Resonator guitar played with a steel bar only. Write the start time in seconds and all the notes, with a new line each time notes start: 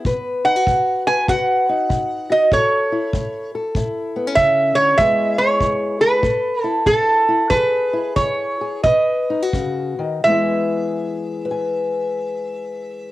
0.45 F#5
1.07 G#5
1.29 F#5
2.32 D#5
2.53 C#5
4.35 E5
4.75 C#5
4.98 E5
5.38 C#5
6.01 B4
6.63 A4
6.87 A4
7.50 B4
8.16 C#5
8.83 D#5
10.24 E5